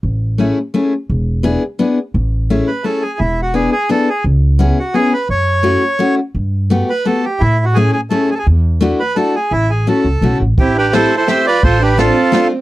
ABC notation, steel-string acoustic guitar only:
X:1
M:3/4
L:1/8
Q:1/4=171
K:A
V:1 name="Steel-string acoustic guitar"
z2 [A,CEG] z [A,CEG] z | z2 [B,DEG] z [B,DEG] z | z2 [A,CEG] z [A,CEG] z | z2 [B,DEG] z [B,DEG] z |
z2 [B,CEG] z [B,CEG] z | z2 [A,CEF] z [A,CEF] z | z2 [A,B,F=G] z [A,B,FG] z | z2 [A,CEG] z [A,CEG] z |
z2 [A,DEF] z [A,DEF] z | z2 [A,CEF] z [A,CEF] z | [K:Am] z2 [A,CEG] z [A,CEG] z | z2 [A,CDF] z [A,CDF] z |]